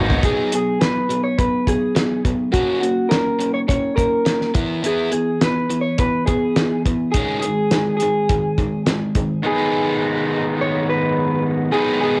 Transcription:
Already playing: G#1 F#3 B3 D#4 F#4 B4 C#5 D#5 C#6
0.10 B3 D#4 F#4, floor tom
0.23 F#3 B3 D#4 G#4, kick, closed hi-hat
0.52 F#3 B3 G#4, closed hi-hat
0.81 F#3 B3 B4, snare, closed hi-hat
1.09 F#3 B3, closed hi-hat
1.24 C#5
1.38 F#3 B3 B4, kick, closed hi-hat
1.67 F#3 B3 G#4, kick, closed hi-hat
1.95 F#3 B3, snare, closed hi-hat
2.25 F#3 B3, kick, closed hi-hat
2.52 A#3 C#4 F#4, kick, closed hi-hat
2.80 A#3 C#4 F#4, closed hi-hat
3.09 A#3 C#4 A#4, snare, closed hi-hat
3.39 A#3 C#4, closed hi-hat
3.54 C#5
3.68 A#3 C#4 C#5, kick, closed hi-hat
3.96 A#3 C#4 A#4, kick, closed hi-hat
4.25 A#3 C#4, snare, closed hi-hat
4.41 snare
4.54 E3 B3 E4, kick, closed hi-hat
4.83 E3 B3 E4 G#4, closed hi-hat
5.11 E3 B3 G#4, closed hi-hat
5.41 E3 B3 B4, snare, closed hi-hat
5.70 E3 B3, closed hi-hat
5.81 C#5
5.98 E3 B3 B4, kick, closed hi-hat
6.26 E3 B3 G#4, kick, closed hi-hat
6.56 E3 B3, snare, closed hi-hat
6.86 E3 B3, kick, closed hi-hat
7.12 G#4, kick, closed hi-hat
7.16 D#3 G#3 C#4
7.40 G#4, closed hi-hat
7.45 D#3 G#3
7.71 D#3 G#3, snare, closed hi-hat
7.97 G#4, closed hi-hat
8.02 D#3 G#3
8.29 D#3 G#3, kick, closed hi-hat
8.58 D#3 G#3, kick, closed hi-hat
8.86 D#3 G#3, snare, closed hi-hat
9.15 D#3 G#3, kick, closed hi-hat
9.43 G#2 D#3 G#3 B3 D#4 G#4 B4
10.61 C#5
10.89 B4
11.71 G#2 D#3 G#3 B3 D#4 G#4 B4
12.02 G#4

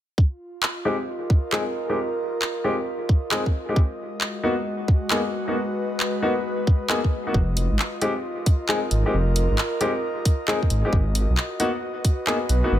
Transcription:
0.18 F4, kick
0.61 D#5, clap
0.85 G#3 C4 D#4 G4
0.98 A#4
1.30 kick
1.52 G#3 C4 D#4 G#4, clap
1.89 G#3 C4 D#4 G4
2.42 clap
2.64 G#3 C4 D#4 G4
3.09 kick
3.31 G#3 C4 D#4 G#4, clap
3.46 kick
3.69 G#3 C4 D#4 G4
3.76 G#3, kick
4.01 F#4
4.21 clap
4.43 A#3 B3 D#4 F#4
4.88 kick
5.10 A#3 B3 D#4 G#4 B4, clap
5.48 A#3 B3 D#4 F#4
6.00 clap
6.22 A#3 B3 D#4 F#4
6.67 kick
6.90 A#3 B3 D#4 G#4, clap
7.04 kick
7.27 A#3 B3 D#4 F#4
7.34 F1 F4, kick
7.57 open hi-hat
7.72 G#1
7.79 clap
8.02 G#3 C4 D#4 G4, open hi-hat
8.28 A#4
8.46 kick, open hi-hat
8.69 G#3 C4 D#4 G#4, clap
8.91 G#1, open hi-hat
9.06 G#3 C4 D#4 G4
9.14 F1
9.36 open hi-hat
9.51 G#1
9.58 clap
9.81 G#3 C4 D#4 G4, open hi-hat
10.25 kick, open hi-hat
10.48 G#3 C4 D#4 G#4, clap
10.63 kick
10.70 G#1, open hi-hat
10.85 G#3 C4 D#4 G4
10.93 G#1 F#4, kick
11.15 open hi-hat
11.30 B1
11.37 clap
11.60 A#3 B3 D#4 F#4 B4, open hi-hat
12.05 kick, open hi-hat
12.27 A#3 B3 D#4 G#4, clap
12.49 B1, open hi-hat
12.64 A#3 B3 D#4 F#4
12.72 G#1

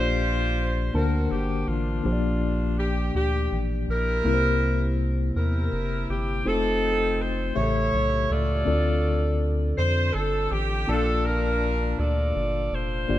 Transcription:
Already playing: A#1 A#2 A#3 D4 F4 G4 C5 D5
0.94 D2 D3 A#3 D4 F#4 A#4 C5 A5
1.32 G1 G4
1.68 A1 D4 F4
2.03 A#1 A#2 F3 A#3 D4 G4 C5
2.13 D5
2.79 G4
3.15 D2 G4
3.52 A1
3.88 A#1 E4 G4 A#4
4.24 C2 C3 A#3 C4 E4 G4 A#4
4.34 C5
5.36 E2 E4 G4 A#4
5.72 F1
6.10 G1 G4
6.45 F1 A3 C4 D#4 F4 A4 C5
7.21 C5
7.55 A1 A2 C#3 A3 E4 G4 C5 C#5 E5
7.62 A4
7.94 B1
8.30 C#2 F4 A4 D5
8.65 D2 D3 C4 D4 F4 A4 D5
9.78 F2 C5
10.13 G1 A4
10.51 A1 G4
10.87 A#1 A#2 A#3 D4 F4 A4 D5 A5
10.91 F4
11.25 D4 F4 A#4
11.98 D2 F4 A4 D5
12.36 G1
12.72 F1 F4 C5
13.08 G1 G2 A#3 D4 F4 G4 D5

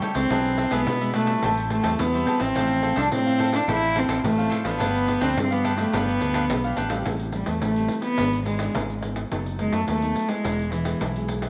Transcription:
Already playing: C#3 G3 A3 E4
0.02 G4 A4 C#5 G5, pandeiro
0.14 C#2 G#3 C4 D4 E4 A4 C#5 G5, pandeiro
0.30 B1 D4 G#4 B4 E5, pandeiro
0.45 pandeiro
0.58 D4 G#4 B4 E5, pandeiro
0.71 B1 G#3 B3 D4 E4 G#4 B4 E5, pandeiro
0.86 B2, pandeiro
1.01 G#3 D4 E4 G#4 B4 E5, pandeiro
1.14 A3 D4 G#4 B4 E5, pandeiro
1.27 G3 C4 E4, pandeiro
1.43 A1 A2 G4 C5 E5 A5, pandeiro
1.57 pandeiro
1.70 A3 G4 C5 E5 A5, pandeiro
1.82 E2 G3 C4 E4 G4 C5 E5 A5, pandeiro
1.99 E2 E3 B3, pandeiro
2.13 G3 C4 E4 C5 E5 A5, pandeiro
2.26 G4 C5 E5 A5, pandeiro
2.39 A1 F3 C4 E4 C5 E5 A5, pandeiro
2.54 A1 A2 E4 A4 C5 F5, pandeiro
2.70 pandeiro
2.81 E4 A4 C5 F5, pandeiro
2.96 C2 F3 C4 D4 E4 A4 C5 F5, pandeiro
3.12 A2 C4, pandeiro
3.25 F3 C4 E4 A4 C5 F5, pandeiro
3.38 E4 A4 C5 F5, pandeiro
3.53 F3 C4 D4 E4, pandeiro
3.67 A1 A2 D4 A4 C5 F5, pandeiro
3.72 E4
3.83 pandeiro
3.94 D4 A4 C5 F5, pandeiro
3.99 C4
4.08 A1 F3 C4 D4 E4 A4 C5 F5, pandeiro
4.23 A1 A2 A3, pandeiro
4.38 F3 C4 E4 A4 C5 F5, pandeiro
4.50 D4 A4 C5 F5, pandeiro
4.64 A1 F3 B3 D4 A4 C5 F5, pandeiro
4.78 G1 G2 D4 G4 B4 F5, pandeiro
4.95 pandeiro
5.06 D4 G4 B4 F5, pandeiro
5.20 D2 F3 B3 C4 D4 G4 B4 F5, pandeiro
5.36 G2 D3, pandeiro
5.43 C4
5.50 F3 B3 D4 G4 B4 F5, pandeiro
5.64 D4 G4 B4 F5, pandeiro
5.77 F3 A3 B3 D4, pandeiro
5.92 G1 G2 F3 B3 D4 G4 B4 F5, pandeiro
6.08 pandeiro
6.21 D2 D4 G4 B4 F5, pandeiro
6.33 F3 B3 D4 G4 B4 F5, pandeiro
6.50 B1 D3, pandeiro
6.64 F3 B3 D4 G4 B4 F5, pandeiro
6.77 A1 D4 G4 B4 F5, pandeiro
6.90 G3 C4 E4 G4 B4 F5, pandeiro
7.05 A1 A2, pandeiro
7.20 pandeiro
7.32 G3 C4 E4, pandeiro
7.46 E2 A3, pandeiro
7.62 A1 E3 A3, pandeiro
7.76 G3 C4 E4, pandeiro
7.88 pandeiro
8.02 B3, pandeiro
8.18 G#1 G#2 E3 B3 D4, pandeiro
8.33 pandeiro
8.46 E3 G#3 B3 D4, pandeiro
8.59 E3 B3 D4, pandeiro
8.75 G#1 G#2, pandeiro
8.90 pandeiro
9.03 E3 B3 D4, pandeiro
9.16 pandeiro
9.31 F#1 F#3 B3 D#4 A4, pandeiro
9.46 pandeiro
9.59 G#3 B3 D#4 A4, pandeiro
9.73 F#2 A3, pandeiro
9.88 D#2 F#3 A3, pandeiro
10.02 B3 D#4 A4, pandeiro
10.16 pandeiro
10.29 G#3 B3 E4, pandeiro
10.45 E1 E3, pandeiro
10.59 pandeiro
10.72 E3, pandeiro
10.85 G#3 B3 E4, pandeiro
11.01 B1 B2, pandeiro
11.16 G#3 B3 E4, pandeiro
11.28 pandeiro
11.42 pandeiro

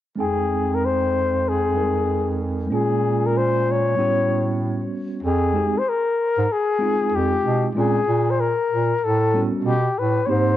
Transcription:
0.15 F2 G#3 C4 D#4
0.20 G#4 G5
0.74 A#4
0.85 C5
1.49 G#4
1.74 G3 C4 D#4 A#4
1.81 G#3
2.66 G#3 A#3 C#4
2.70 A#2 F4 G#4
3.26 A#4
3.38 C5
3.71 C#5
3.95 A2 G3 B3 C#4
4.00 F#4
5.23 F2 G#4
5.53 G#3 C4 D#4 G4
5.79 C5
5.89 A#4
6.38 G#2
6.52 G#4
6.79 G#3 C4 D#4 F4
7.12 F2 G4
7.43 B2
7.75 A#2 G#3 C4 C#4 F4 G#4
8.07 A#2
8.30 C5
8.40 A#4
8.70 A#2
9.01 A2 A4
9.33 G3 B3 C#4 F#4
9.64 B2 G4
9.97 A2 B4
10.26 G#2 A#3 C4 D#4 G4 C5 C#5

